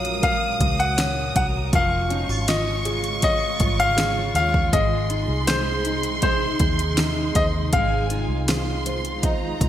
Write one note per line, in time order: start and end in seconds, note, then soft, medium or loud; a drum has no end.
0.00 0.56 A#1 medium
0.00 1.73 F#2 medium
0.00 1.70 A#2 medium
0.00 1.68 F#3 medium
0.00 1.68 G#3 medium
0.00 0.56 C#4 soft
0.00 0.60 F#4 medium
0.00 1.70 F#4 medium
0.00 0.20 A#4 medium
0.00 1.35 A#4 medium
0.00 0.96 C#5 medium
0.00 0.22 F5 medium
0.00 1.73 D#6 loud
0.05 closed hi-hat medium
0.22 0.98 C#4 medium
0.22 1.68 A#4 medium
0.22 0.81 F5 medium
0.22 kick medium
0.22 closed hi-hat medium
0.60 1.31 C#2 medium
0.60 1.81 F#4 medium
0.60 kick medium
0.60 closed hi-hat medium
0.80 1.32 F#5 medium
0.80 closed hi-hat medium
0.97 2.14 C#4 medium
0.97 1.70 C#5 medium
0.97 snare loud
0.97 closed hi-hat medium
1.36 1.71 C2 medium
1.36 1.81 A#4 medium
1.36 1.45 F#5 loud
1.36 kick medium
1.36 closed hi-hat medium
1.72 2.25 F1 loud
1.72 4.70 C#3 medium
1.72 4.69 F3 medium
1.72 4.73 F3 medium
1.72 4.70 G#3 medium
1.72 4.71 F4 medium
1.72 2.51 F5 loud
1.72 4.69 C#6 loud
1.72 kick loud
1.72 closed hi-hat medium
2.10 3.56 C#4 medium
2.10 2.29 D#4 medium
2.10 closed hi-hat medium
2.29 3.56 G#1 medium
2.29 2.84 F4 soft
2.47 3.94 F4 medium
2.47 4.34 C#5 medium
2.47 3.22 D#5 medium
2.47 snare loud
2.47 closed hi-hat medium
2.85 3.59 F4 medium
2.85 3.95 G#4 medium
2.85 closed hi-hat medium
3.04 closed hi-hat medium
3.22 3.97 C#4 medium
3.22 4.69 C#5 medium
3.22 3.76 D#5 medium
3.22 kick medium
3.22 closed hi-hat medium
3.60 4.31 G#1 medium
3.60 4.80 F4 medium
3.60 kick medium
3.60 closed hi-hat medium
3.80 4.34 F5 loud
3.80 closed hi-hat medium
3.97 4.81 C#4 medium
3.97 4.70 G#4 medium
3.97 snare loud
3.97 closed hi-hat medium
4.35 4.74 D#2 medium
4.35 4.80 C#5 medium
4.35 4.74 F5 loud
4.35 closed hi-hat medium
4.54 kick medium
4.73 5.25 G#1 loud
4.73 7.71 C3 medium
4.73 5.48 G#3 medium
4.73 7.72 G#3 medium
4.73 7.70 G#3 medium
4.73 7.70 D#4 medium
4.73 5.44 D#5 medium
4.73 7.73 C6 loud
4.73 kick loud
4.73 closed hi-hat medium
5.10 5.84 D#4 medium
5.10 5.84 G#4 medium
5.10 closed hi-hat medium
5.28 6.56 C2 medium
5.47 6.20 G#3 medium
5.47 7.34 C5 medium
5.47 6.19 C5 medium
5.47 snare loud
5.47 closed hi-hat medium
5.85 6.97 D#4 medium
5.85 6.60 G#4 medium
5.85 closed hi-hat medium
6.03 closed hi-hat medium
6.22 7.68 G#3 medium
6.22 6.97 D#4 medium
6.22 7.31 C5 medium
6.22 kick medium
6.22 closed hi-hat medium
6.59 7.31 D#2 medium
6.59 8.09 G#4 medium
6.59 kick medium
6.59 closed hi-hat medium
6.79 closed hi-hat medium
6.97 8.13 D#4 medium
6.97 7.71 D#4 medium
6.97 snare loud
6.97 closed hi-hat medium
7.35 7.70 D#2 medium
7.35 8.47 C5 medium
7.35 7.44 D#5 medium
7.35 kick medium
7.35 closed hi-hat medium
7.72 8.25 G#1 loud
7.72 9.69 D#3 medium
7.72 9.69 G#3 medium
7.72 9.69 F4 medium
7.72 9.69 F5 medium
7.72 8.48 G#5 medium
7.72 kick loud
7.72 closed hi-hat medium
8.10 9.57 D#4 medium
8.10 8.84 F4 medium
8.10 closed hi-hat medium
8.29 9.56 C2 medium
8.47 9.69 G#4 medium
8.47 9.69 C5 medium
8.47 9.19 C6 loud
8.47 snare loud
8.47 closed hi-hat medium
8.85 9.59 F4 medium
8.85 9.69 C5 medium
8.85 closed hi-hat medium
9.05 closed hi-hat medium
9.22 9.69 D#4 medium
9.22 9.69 D#5 medium
9.22 9.69 A#5 medium
9.22 kick medium
9.22 closed hi-hat medium
9.60 9.69 C2 medium
9.60 9.69 F4 medium
9.60 kick medium
9.60 closed hi-hat medium